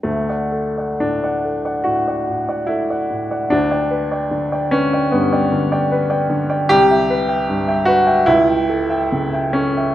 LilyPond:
\new Staff \with { instrumentName = "Upright piano" } { \time 4/4 \key d \major \tempo 4 = 74 << { d,16 <d'' fis''>16 a'16 <d'' fis''>16 a,16 <d'' fis''>16 a'16 <d'' fis''>16 a,16 <d'' fis''>16 a,16 <d'' fis''>16 a'16 <d'' fis''>16 a,16 <d'' fis''>16 | d,16 <d'' g''>16 b'16 <d'' g''>16 d16 <d'' g''>16 b'16 <d'' g''>16 g,16 <d'' g''>16 d16 <d'' g''>16 b'16 <d'' g''>16 d16 <d'' g''>16 | \key a \dorian c,16 <e'' g''>16 b'16 <e'' g''>16 g,16 <e'' g''>16 b'16 <e'' g''>16 cis,16 <e'' g''>16 a'16 <e'' g''>16 cis16 <e'' g''>16 a'16 <e'' g''>16 | } \\ { a4 d'4 fis'4 e'4 | d'4. cis'8 b4. r8 | g'4. fis'8 e'4. cis'8 | } >> }